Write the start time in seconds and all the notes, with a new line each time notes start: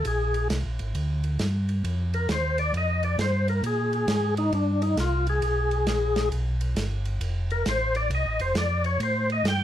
0.05 A#1 G#4, ride
0.34 ride
0.49 C2, snare, hi-hat pedal, ride
0.65 A#1
0.79 G#1, ride
0.95 D2, ride
1.24 ride
1.39 G2, snare, hi-hat pedal, ride
1.69 ride
1.84 F2, ride
2.14 A#4, ride
2.29 D#2 C5, snare, hi-hat pedal, ride
2.58 D5, ride
2.73 F2, ride
2.77 D#5
3.03 D5, ride
3.18 G2 C5, snare, hi-hat pedal, ride
3.48 A#4, ride
3.63 A#2 G#4, ride
3.93 ride
4.08 G#2, snare, hi-hat pedal, ride
4.37 D#4, ride
4.53 G2 D4, ride
4.82 D#4, ride
4.97 C2 F4, snare, hi-hat pedal, ride
5.27 G#4, ride
5.42 B1, ride
5.71 ride
5.86 A#1, snare, hi-hat pedal, ride
6.16 snare, ride
6.31 B1, ride
6.61 ride
6.75 G1, snare, hi-hat pedal, ride
7.05 ride
7.20 F1, ride
7.50 A#4, ride
7.66 A1 C5, snare, hi-hat pedal, ride
7.95 D5, ride
8.10 C2, ride
8.15 D#5
8.26 A1
8.39 F1 C5, ride
8.55 F2 D5, snare, hi-hat pedal, ride
8.84 C#5, ride
9.00 A2 C5, ride
9.30 D#5, ride
9.44 G2, snare, hi-hat pedal, ride
9.48 G5